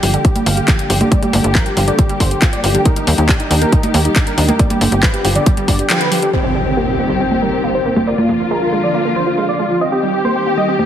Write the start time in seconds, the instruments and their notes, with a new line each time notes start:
Already playing: string section D3 G3 A#3 G4
0.03 analog synth bass G1, synth arpeggio sound F3, supersaw synth G4, open hi-hat
0.14 synth arpeggio sound D3, supersaw synth G5, closed hi-hat
0.25 synth arpeggio sound G3, supersaw synth G4, kick, closed hi-hat
0.35 synth arpeggio sound G3, supersaw synth G4, closed hi-hat, high conga
0.46 analog synth bass G1, synth arpeggio sound D3, supersaw synth F5, open hi-hat
0.57 supersaw synth G4, closed hi-hat
0.68 synth arpeggio sound F3, supersaw synth G4, kick, clap, closed hi-hat
0.79 supersaw synth G5, closed hi-hat
0.90 analog synth bass G1, synth arpeggio sound F3, supersaw synth G4, open hi-hat
1.01 synth arpeggio sound D3, supersaw synth G4, closed hi-hat, high conga
1.11 synth arpeggio sound G3, supersaw synth D5, kick, closed hi-hat
1.22 synth arpeggio sound G3, supersaw synth G4, closed hi-hat, high conga
1.33 analog synth bass G1, synth arpeggio sound D3, open hi-hat, high conga
1.44 analog synth bass G1, supersaw synth G4, closed hi-hat
1.55 synth arpeggio sound F3, supersaw synth A#4, kick, clap, closed hi-hat
1.66 supersaw synth G4, closed hi-hat
1.77 analog synth bass G1, synth arpeggio sound F3, supersaw synth G4, open hi-hat
1.88 synth arpeggio sound D3, supersaw synth D5, closed hi-hat
1.99 synth arpeggio sound G3, supersaw synth G4, kick, closed hi-hat
2.09 synth arpeggio sound G3, supersaw synth G4, closed hi-hat
2.20 analog synth bass G1, synth arpeggio sound D3, supersaw synth C5, kick, open hi-hat
2.31 supersaw synth G4, closed hi-hat
2.42 synth arpeggio sound F3, supersaw synth G4, kick, clap, closed hi-hat
2.53 supersaw synth D5, closed hi-hat
2.64 analog synth bass G1, synth arpeggio sound F3, supersaw synth G4, open hi-hat
2.75 synth arpeggio sound D3, supersaw synth G4, closed hi-hat
2.85 string section D#3, synth arpeggio sound D#4, supersaw synth A#4, kick, closed hi-hat
2.96 synth arpeggio sound D#4, supersaw synth D#4, closed hi-hat
3.07 analog synth bass D#2, synth arpeggio sound A#3, open hi-hat
3.18 analog synth bass D#2, supersaw synth D#4, closed hi-hat
3.29 synth arpeggio sound D4, supersaw synth G4, kick, clap, closed hi-hat
3.40 supersaw synth D#4, closed hi-hat
3.51 analog synth bass D#2, synth arpeggio sound D4, supersaw synth D#4, open hi-hat
3.62 synth arpeggio sound A#3, supersaw synth A#4, closed hi-hat
3.72 synth arpeggio sound D#4, supersaw synth D#4, kick, closed hi-hat
3.83 synth arpeggio sound D#4, supersaw synth D#4, closed hi-hat, high conga
3.94 analog synth bass D#2, synth arpeggio sound A#3, supersaw synth G4, open hi-hat
4.05 supersaw synth D#4, closed hi-hat
4.16 synth arpeggio sound D4, supersaw synth D#4, kick, clap, closed hi-hat
4.27 supersaw synth A#4, closed hi-hat
4.38 analog synth bass D#2, synth arpeggio sound D4, supersaw synth D#4, open hi-hat
4.49 synth arpeggio sound A#3, supersaw synth D#4, closed hi-hat, high conga
4.59 string section D3 B3, synth arpeggio sound G3, supersaw synth D5, kick, closed hi-hat
4.70 synth arpeggio sound G3, supersaw synth G4, closed hi-hat, high conga
4.81 analog synth bass G1, synth arpeggio sound D3, open hi-hat, high conga
4.92 analog synth bass G1, supersaw synth G4, closed hi-hat
5.03 synth arpeggio sound F3, supersaw synth B4, kick, clap, closed hi-hat
5.14 supersaw synth G4, closed hi-hat
5.25 analog synth bass G1, synth arpeggio sound F3, supersaw synth G4, open hi-hat
5.36 synth arpeggio sound D3, supersaw synth D5, closed hi-hat
5.46 synth arpeggio sound G3, supersaw synth G4, kick, closed hi-hat
5.57 synth arpeggio sound G3, supersaw synth G4, closed hi-hat
5.68 analog synth bass G1, synth arpeggio sound D3, supersaw synth D5, kick, open hi-hat
5.79 supersaw synth G4, closed hi-hat
5.90 synth arpeggio sound F3, supersaw synth G4, clap, closed hi-hat
6.01 supersaw synth B4, closed hi-hat
6.12 synth arpeggio sound F3, supersaw synth G4, open hi-hat
6.22 synth arpeggio sound D3, supersaw synth G4, closed hi-hat
6.33 string section D#3 G3 C4 G4, synth arpeggio sound C4, supersaw synth C5, impact
6.44 supersaw synth C4, synth arpeggio sound C4
6.55 synth arpeggio sound G3
6.66 supersaw synth C4
6.77 synth arpeggio sound A#3, supersaw synth G4
6.88 supersaw synth C4
6.99 synth arpeggio sound A#3, supersaw synth C4
7.09 synth arpeggio sound G3, supersaw synth C5
7.20 synth arpeggio sound C4, supersaw synth C4
7.31 synth arpeggio sound C4, supersaw synth C4, high conga
7.42 synth arpeggio sound G3, supersaw synth A#4
7.53 supersaw synth C4
7.64 synth arpeggio sound A#3, supersaw synth C4
7.75 supersaw synth C5
7.86 synth arpeggio sound A#3, supersaw synth C4
7.96 synth arpeggio sound G3, supersaw synth C4, high conga
8.07 string section D3 F3 A#3 F4, synth arpeggio sound A#3, supersaw synth D5
8.18 synth arpeggio sound A#3, supersaw synth F4, high conga
8.29 synth arpeggio sound F3, high conga
8.40 supersaw synth F4
8.51 synth arpeggio sound G#3, supersaw synth A#4
8.62 supersaw synth F4
8.72 synth arpeggio sound G#3, supersaw synth F4
8.83 synth arpeggio sound F3, supersaw synth D5
8.94 synth arpeggio sound A#3, supersaw synth F4
9.05 synth arpeggio sound A#3, supersaw synth F4
9.16 synth arpeggio sound F3, supersaw synth C5
9.27 supersaw synth F4
9.38 synth arpeggio sound G#3, supersaw synth F4
9.49 supersaw synth D5
9.59 synth arpeggio sound G#3, supersaw synth F4
9.70 synth arpeggio sound F3, supersaw synth F4
9.81 string section D#3 G3 C4 G4, synth arpeggio sound C4, supersaw synth D#5
9.92 synth arpeggio sound C4, supersaw synth G4
10.03 synth arpeggio sound G3
10.14 supersaw synth G4
10.25 synth arpeggio sound A#3, supersaw synth C5
10.36 supersaw synth G4
10.46 synth arpeggio sound A#3, supersaw synth G4
10.57 synth arpeggio sound G3, supersaw synth D#5
10.68 synth arpeggio sound C4, supersaw synth G4
10.79 synth arpeggio sound C4, supersaw synth G4, high conga